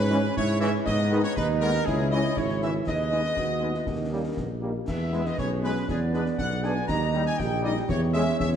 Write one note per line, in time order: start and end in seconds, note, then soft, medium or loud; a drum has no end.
0.00 0.28 G#2 loud
0.00 0.33 C#4 loud
0.00 0.83 E4 medium
0.00 0.33 B4 loud
0.00 0.83 C#5 loud
0.10 0.19 E3 medium
0.10 0.20 G#3 medium
0.10 0.20 C#4 loud
0.10 0.20 C#4 medium
0.10 0.20 E4 medium
0.10 snare medium
0.24 snare medium
0.36 0.78 G#2 loud
0.36 0.88 E4 loud
0.36 0.60 C#5 loud
0.36 concert bass drum medium
0.36 snare medium
0.49 snare medium
0.60 0.69 E3 loud
0.60 0.71 G#3 medium
0.60 0.70 C#4 loud
0.60 0.70 C#4 medium
0.60 0.71 E4 medium
0.60 0.72 E5 loud
0.60 snare medium
0.86 1.24 G#2 loud
0.86 1.37 B3 loud
0.86 1.87 D#4 loud
0.86 1.83 B4 loud
0.86 1.21 D#5 loud
0.86 concert bass drum loud
0.86 snare medium
0.86 crash soft
1.10 1.20 D#3 medium
1.10 1.21 G#3 medium
1.10 1.20 B3 loud
1.10 1.21 B3 medium
1.10 1.21 D#4 medium
1.10 snare medium
1.24 1.36 C#5 loud
1.24 snare medium
1.36 1.79 D#2 loud
1.36 1.90 D#4 loud
1.36 1.48 B4 loud
1.36 concert bass drum medium
1.36 snare medium
1.61 1.71 D#3 loud
1.61 1.71 G#3 medium
1.61 1.70 B3 loud
1.61 1.71 B3 medium
1.61 1.71 D#4 medium
1.61 1.85 A#4 loud
1.75 snare medium
1.86 2.29 C#2 loud
1.86 2.88 E4 loud
1.86 2.37 E4 loud
1.86 2.12 G#4 loud
1.86 2.84 C#5 medium
1.86 concert bass drum loud
1.86 snare medium
2.10 2.21 E3 medium
2.10 2.21 G#3 medium
2.10 2.21 C#4 medium
2.10 2.21 E4 medium
2.10 2.34 D#5 loud
2.10 snare medium
2.24 snare medium
2.37 2.79 G#1 medium
2.37 2.84 E4 loud
2.37 2.62 C#5 loud
2.37 concert bass drum medium
2.37 snare medium
2.49 snare medium
2.61 2.71 E3 medium
2.61 2.72 G#3 medium
2.61 2.70 C#4 medium
2.61 2.71 C#4 medium
2.61 2.72 E4 medium
2.61 2.74 E5 loud
2.61 snare medium
2.87 3.29 D#2 medium
2.87 3.30 D#4 medium
2.87 3.84 G#4 medium
2.87 3.88 B4 medium
2.87 4.59 D#5 loud
2.87 concert bass drum medium
2.87 snare medium
2.87 crash soft
3.11 3.20 G#3 medium
3.11 3.21 G#3 medium
3.11 3.20 B3 medium
3.11 3.21 B3 medium
3.11 3.21 D#4 medium
3.11 snare medium
3.24 snare medium
3.37 3.79 D#2 medium
3.37 3.77 F#4 loud
3.37 concert bass drum medium
3.37 snare medium
3.61 3.70 G#3 medium
3.61 3.71 G#3 medium
3.61 3.70 B3 medium
3.61 3.71 B3 medium
3.61 3.71 D#4 medium
3.75 3.90 E4 medium
3.75 snare medium
3.87 4.30 D#2 medium
3.87 4.13 D#4 medium
3.87 4.63 G4 medium
3.87 4.63 A#4 medium
3.87 concert bass drum medium
3.87 snare medium
4.12 4.21 G3 medium
4.12 4.22 G3 medium
4.12 4.21 A#3 medium
4.12 4.25 C#4 medium
4.12 4.22 D#4 medium
4.37 4.80 A#1 medium
4.37 4.50 B3 medium
4.37 concert bass drum medium
4.37 snare medium
4.61 4.71 G3 medium
4.61 4.72 G3 medium
4.61 4.71 A#3 medium
4.61 4.72 A#3 medium
4.61 4.72 D#4 medium
4.61 4.75 D#4 medium
4.87 5.30 E2 medium
4.87 5.35 B3 medium
4.87 5.85 G#4 medium
4.87 5.84 B4 medium
4.87 5.23 E5 loud
4.87 concert bass drum medium
4.87 snare medium
4.87 crash medium
5.12 5.22 G#3 medium
5.12 5.22 B3 medium
5.12 snare medium
5.26 5.39 D#5 loud
5.26 snare medium
5.38 5.80 B1 medium
5.38 5.85 C#4 medium
5.38 5.50 C#5 loud
5.38 concert bass drum medium
5.38 snare medium
5.63 5.73 G#3 medium
5.63 5.72 B3 medium
5.63 5.73 B3 medium
5.63 5.87 B4 loud
5.76 snare medium
5.88 6.30 E2 medium
5.88 6.85 B3 loud
5.88 6.00 G#4 loud
5.88 6.89 B4 medium
5.88 6.89 D5 medium
5.88 concert bass drum medium
5.88 snare medium
6.13 6.23 G#3 medium
6.13 6.22 B3 medium
6.13 6.23 D4 medium
6.13 6.25 B4 loud
6.13 snare medium
6.26 snare medium
6.38 6.81 B1 medium
6.38 6.62 F#5 loud
6.38 concert bass drum medium
6.38 snare medium
6.51 snare medium
6.62 6.72 G#3 medium
6.62 6.73 G#3 medium
6.62 6.73 B3 medium
6.62 6.72 D4 medium
6.62 6.73 D4 medium
6.62 6.89 G#5 loud
6.62 snare medium
6.88 7.31 D#2 loud
6.88 7.42 D#4 loud
6.88 7.86 G4 medium
6.88 7.86 D#5 medium
6.88 7.24 A#5 loud
6.88 concert bass drum loud
6.88 snare medium
6.88 crash soft
7.14 7.23 G3 medium
7.14 7.23 D#4 medium
7.14 snare medium
7.26 7.38 G#5 loud
7.26 snare medium
7.38 7.81 A#1 loud
7.38 7.92 G4 loud
7.38 7.64 G5 loud
7.38 concert bass drum medium
7.38 snare medium
7.63 7.72 G3 medium
7.63 7.74 G3 medium
7.63 7.72 D#4 medium
7.63 7.74 D#4 medium
7.63 7.76 D#5 loud
7.77 snare medium
7.89 8.31 E2 loud
7.89 8.42 E4 loud
7.89 8.56 G#4 medium
7.89 8.00 C#5 loud
7.89 8.56 C#5 loud
7.89 concert bass drum loud
7.89 snare medium
8.13 8.23 G#3 medium
8.13 8.24 G#3 medium
8.13 8.23 C#4 medium
8.13 8.24 C#4 medium
8.13 8.24 G#4 medium
8.13 8.37 E5 loud
8.13 snare medium
8.27 snare medium
8.39 8.56 E2 loud
8.39 8.56 C#4 loud
8.39 8.50 E5 loud
8.39 concert bass drum medium
8.39 snare medium
8.53 snare medium